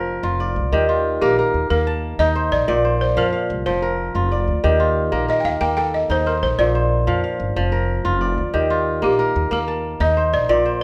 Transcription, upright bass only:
0, 0, Header, 1, 2, 480
1, 0, Start_track
1, 0, Tempo, 325556
1, 1069, Time_signature, 12, 3, 24, 8
1, 15974, End_track
2, 0, Start_track
2, 0, Title_t, "Upright bass"
2, 0, Program_c, 0, 32
2, 0, Note_on_c, 0, 29, 78
2, 285, Note_off_c, 0, 29, 0
2, 339, Note_on_c, 0, 29, 90
2, 827, Note_on_c, 0, 36, 83
2, 850, Note_off_c, 0, 29, 0
2, 1049, Note_off_c, 0, 36, 0
2, 1064, Note_on_c, 0, 39, 79
2, 1729, Note_off_c, 0, 39, 0
2, 1789, Note_on_c, 0, 34, 87
2, 2010, Note_off_c, 0, 34, 0
2, 2273, Note_on_c, 0, 39, 85
2, 2492, Note_off_c, 0, 39, 0
2, 2513, Note_on_c, 0, 39, 78
2, 3174, Note_off_c, 0, 39, 0
2, 3228, Note_on_c, 0, 39, 92
2, 3708, Note_on_c, 0, 34, 75
2, 3730, Note_off_c, 0, 39, 0
2, 3930, Note_off_c, 0, 34, 0
2, 3951, Note_on_c, 0, 34, 79
2, 4613, Note_off_c, 0, 34, 0
2, 4668, Note_on_c, 0, 41, 82
2, 4890, Note_off_c, 0, 41, 0
2, 5161, Note_on_c, 0, 36, 94
2, 5377, Note_off_c, 0, 36, 0
2, 5396, Note_on_c, 0, 29, 75
2, 6056, Note_off_c, 0, 29, 0
2, 6114, Note_on_c, 0, 29, 95
2, 6599, Note_on_c, 0, 38, 77
2, 6621, Note_off_c, 0, 29, 0
2, 6817, Note_off_c, 0, 38, 0
2, 6845, Note_on_c, 0, 39, 86
2, 7502, Note_off_c, 0, 39, 0
2, 7552, Note_on_c, 0, 34, 76
2, 7773, Note_off_c, 0, 34, 0
2, 8030, Note_on_c, 0, 39, 96
2, 8252, Note_off_c, 0, 39, 0
2, 8275, Note_on_c, 0, 39, 69
2, 8936, Note_off_c, 0, 39, 0
2, 8988, Note_on_c, 0, 39, 102
2, 9472, Note_on_c, 0, 34, 83
2, 9494, Note_off_c, 0, 39, 0
2, 9693, Note_off_c, 0, 34, 0
2, 9711, Note_on_c, 0, 34, 92
2, 10374, Note_off_c, 0, 34, 0
2, 10430, Note_on_c, 0, 41, 79
2, 10651, Note_off_c, 0, 41, 0
2, 10906, Note_on_c, 0, 31, 94
2, 11129, Note_off_c, 0, 31, 0
2, 11150, Note_on_c, 0, 29, 85
2, 11813, Note_off_c, 0, 29, 0
2, 11870, Note_on_c, 0, 29, 99
2, 12352, Note_on_c, 0, 38, 76
2, 12374, Note_off_c, 0, 29, 0
2, 12572, Note_off_c, 0, 38, 0
2, 12595, Note_on_c, 0, 39, 80
2, 13255, Note_off_c, 0, 39, 0
2, 13309, Note_on_c, 0, 34, 86
2, 13530, Note_off_c, 0, 34, 0
2, 13796, Note_on_c, 0, 39, 95
2, 14014, Note_off_c, 0, 39, 0
2, 14028, Note_on_c, 0, 39, 74
2, 14691, Note_off_c, 0, 39, 0
2, 14748, Note_on_c, 0, 39, 101
2, 15227, Note_on_c, 0, 34, 79
2, 15249, Note_off_c, 0, 39, 0
2, 15449, Note_off_c, 0, 34, 0
2, 15467, Note_on_c, 0, 34, 75
2, 15974, Note_off_c, 0, 34, 0
2, 15974, End_track
0, 0, End_of_file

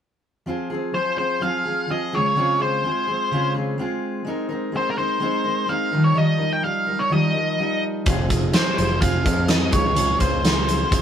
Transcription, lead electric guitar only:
0, 0, Header, 1, 2, 480
1, 0, Start_track
1, 0, Key_signature, -4, "minor"
1, 0, Tempo, 474684
1, 476, Time_signature, 4, 2, 24, 8
1, 11140, End_track
2, 0, Start_track
2, 0, Title_t, "Lead electric guitar"
2, 0, Program_c, 0, 29
2, 956, Note_on_c, 0, 72, 74
2, 1185, Note_off_c, 0, 72, 0
2, 1197, Note_on_c, 0, 72, 67
2, 1420, Note_off_c, 0, 72, 0
2, 1439, Note_on_c, 0, 77, 87
2, 1932, Note_off_c, 0, 77, 0
2, 1937, Note_on_c, 0, 75, 84
2, 2172, Note_on_c, 0, 73, 76
2, 2174, Note_off_c, 0, 75, 0
2, 2644, Note_off_c, 0, 73, 0
2, 2648, Note_on_c, 0, 72, 70
2, 3562, Note_off_c, 0, 72, 0
2, 4820, Note_on_c, 0, 72, 65
2, 4955, Note_off_c, 0, 72, 0
2, 4959, Note_on_c, 0, 70, 54
2, 5033, Note_off_c, 0, 70, 0
2, 5037, Note_on_c, 0, 72, 67
2, 5756, Note_on_c, 0, 77, 83
2, 5779, Note_off_c, 0, 72, 0
2, 6091, Note_off_c, 0, 77, 0
2, 6111, Note_on_c, 0, 73, 78
2, 6246, Note_off_c, 0, 73, 0
2, 6246, Note_on_c, 0, 75, 83
2, 6599, Note_on_c, 0, 79, 84
2, 6612, Note_off_c, 0, 75, 0
2, 6713, Note_off_c, 0, 79, 0
2, 6717, Note_on_c, 0, 77, 84
2, 7079, Note_on_c, 0, 73, 76
2, 7087, Note_off_c, 0, 77, 0
2, 7202, Note_off_c, 0, 73, 0
2, 7202, Note_on_c, 0, 75, 68
2, 7919, Note_off_c, 0, 75, 0
2, 8637, Note_on_c, 0, 72, 67
2, 8859, Note_off_c, 0, 72, 0
2, 8876, Note_on_c, 0, 72, 72
2, 9107, Note_on_c, 0, 77, 91
2, 9123, Note_off_c, 0, 72, 0
2, 9589, Note_on_c, 0, 75, 81
2, 9605, Note_off_c, 0, 77, 0
2, 9815, Note_off_c, 0, 75, 0
2, 9840, Note_on_c, 0, 73, 78
2, 10311, Note_off_c, 0, 73, 0
2, 10316, Note_on_c, 0, 72, 73
2, 11140, Note_off_c, 0, 72, 0
2, 11140, End_track
0, 0, End_of_file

